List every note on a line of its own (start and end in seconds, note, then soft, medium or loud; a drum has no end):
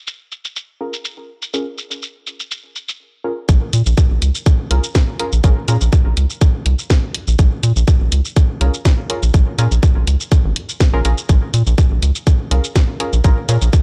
0.07 shaker medium
0.32 shaker soft
0.45 shaker soft
0.56 shaker medium
0.81 0.92 C#4 medium
0.81 0.92 F4 medium
0.81 0.92 G#4 medium
0.81 0.92 A#4 medium
0.93 shaker soft
1.05 shaker medium
1.42 shaker soft
1.54 1.65 C#4 medium
1.54 1.65 F4 medium
1.54 1.65 G#4 medium
1.54 1.65 A#4 medium
1.54 shaker medium
1.78 shaker soft
1.91 shaker soft
2.03 shaker medium
2.27 shaker soft
2.40 shaker soft
2.51 shaker medium
2.76 shaker soft
2.89 shaker soft
3.24 3.32 C#4 medium
3.24 3.32 F4 medium
3.24 3.32 G#4 medium
3.24 3.32 A#4 medium
3.49 3.58 A#1 medium
3.49 kick loud
3.49 shaker medium
3.73 3.82 A#2 medium
3.73 closed hi-hat medium
3.73 shaker medium
3.86 3.94 A#1 loud
3.86 shaker soft
3.98 kick loud
3.98 shaker medium
4.11 4.19 A#1 medium
4.22 4.31 C#2 medium
4.22 closed hi-hat loud
4.22 shaker soft
4.35 shaker soft
4.46 kick loud
4.46 shaker medium
4.71 4.80 C2 loud
4.71 4.82 C#4 medium
4.71 4.82 F4 medium
4.71 4.82 G#4 medium
4.71 4.82 A#4 medium
4.71 closed hi-hat medium
4.84 shaker soft
4.95 kick loud
4.95 snare loud
4.95 shaker medium
5.19 5.31 C#4 medium
5.19 5.31 F4 medium
5.19 5.31 G#4 medium
5.19 5.31 A#4 medium
5.19 closed hi-hat loud
5.32 5.40 A#1 medium
5.32 shaker soft
5.44 5.53 A#1 loud
5.44 5.56 C#4 medium
5.44 5.56 F4 medium
5.44 5.56 G#4 medium
5.44 5.56 A#4 medium
5.44 kick loud
5.44 shaker medium
5.68 5.77 A#2 medium
5.68 5.76 C#4 loud
5.68 5.76 F4 medium
5.68 5.76 G#4 medium
5.68 5.76 A#4 loud
5.68 closed hi-hat medium
5.68 shaker soft
5.81 5.89 A#1 loud
5.81 shaker soft
5.93 kick loud
5.93 shaker medium
6.06 6.14 A#1 medium
6.17 6.26 C#2 medium
6.17 closed hi-hat loud
6.17 shaker soft
6.30 shaker soft
6.41 kick loud
6.41 shaker medium
6.66 6.75 C2 loud
6.66 closed hi-hat medium
6.79 shaker soft
6.90 kick loud
6.90 snare loud
6.90 shaker medium
7.15 closed hi-hat loud
7.28 7.36 A#1 medium
7.28 shaker soft
7.39 7.48 A#1 medium
7.39 kick loud
7.39 shaker medium
7.63 7.72 A#2 medium
7.63 closed hi-hat loud
7.63 shaker soft
7.76 7.84 A#1 loud
7.76 shaker soft
7.88 kick loud
7.88 shaker medium
8.01 8.09 A#1 medium
8.12 8.21 C#2 medium
8.12 closed hi-hat loud
8.12 shaker soft
8.25 shaker soft
8.37 kick loud
8.37 shaker medium
8.61 8.70 C2 loud
8.61 8.73 C#4 medium
8.61 8.73 F4 medium
8.61 8.73 G#4 medium
8.61 8.73 A#4 medium
8.61 closed hi-hat loud
8.74 shaker soft
8.85 kick loud
8.85 snare loud
8.85 shaker medium
9.10 9.21 C#4 medium
9.10 9.21 F4 medium
9.10 9.21 G#4 medium
9.10 9.21 A#4 medium
9.10 closed hi-hat loud
9.23 9.31 A#1 medium
9.23 shaker soft
9.34 9.43 A#1 medium
9.34 kick loud
9.34 shaker medium
9.58 9.68 A#2 loud
9.58 9.66 C#4 medium
9.58 9.66 F4 medium
9.58 9.66 G#4 medium
9.58 9.66 A#4 loud
9.58 closed hi-hat medium
9.58 shaker soft
9.71 9.79 A#1 loud
9.71 shaker soft
9.83 kick loud
9.83 shaker medium
9.96 10.04 A#1 medium
10.07 10.16 C#2 medium
10.07 closed hi-hat loud
10.07 shaker soft
10.20 shaker soft
10.32 kick loud
10.32 shaker medium
10.45 10.53 G#1 loud
10.56 closed hi-hat loud
10.69 shaker soft
10.80 kick loud
10.80 snare loud
10.80 shaker medium
10.93 11.01 A#1 medium
10.93 11.00 C#4 loud
10.93 11.00 F4 medium
10.93 11.00 G#4 medium
10.93 11.00 A#4 loud
11.05 11.14 A#1 loud
11.05 11.12 C#4 medium
11.05 11.12 F4 medium
11.05 11.12 G#4 medium
11.05 11.12 A#4 loud
11.05 closed hi-hat loud
11.05 shaker soft
11.18 shaker soft
11.29 11.38 A#1 loud
11.29 kick loud
11.29 shaker medium
11.54 11.63 A#2 loud
11.54 closed hi-hat medium
11.54 shaker soft
11.67 11.75 A#1 loud
11.67 shaker soft
11.78 kick loud
11.78 shaker medium
11.91 11.99 A#1 medium
12.02 12.11 C#2 medium
12.02 closed hi-hat medium
12.02 shaker soft
12.15 shaker soft
12.27 kick loud
12.27 shaker medium
12.51 12.60 C2 loud
12.51 12.63 C#4 medium
12.51 12.63 F4 medium
12.51 12.63 G#4 medium
12.51 12.63 A#4 medium
12.51 closed hi-hat medium
12.64 shaker soft
12.76 kick loud
12.76 snare loud
12.76 shaker medium
13.00 13.12 C#4 medium
13.00 13.12 F4 medium
13.00 13.12 G#4 medium
13.00 13.12 A#4 medium
13.00 closed hi-hat medium
13.13 13.21 A#1 medium
13.13 shaker soft
13.24 13.33 A#1 loud
13.24 13.36 C#4 medium
13.24 13.36 F4 medium
13.24 13.36 G#4 medium
13.24 13.36 A#4 medium
13.24 kick loud
13.24 shaker medium
13.49 13.58 A#2 loud
13.49 13.56 C#4 loud
13.49 13.56 F4 medium
13.49 13.56 G#4 medium
13.49 13.56 A#4 loud
13.49 closed hi-hat medium
13.49 shaker soft
13.62 13.70 A#1 loud
13.62 shaker soft
13.73 kick loud
13.73 shaker medium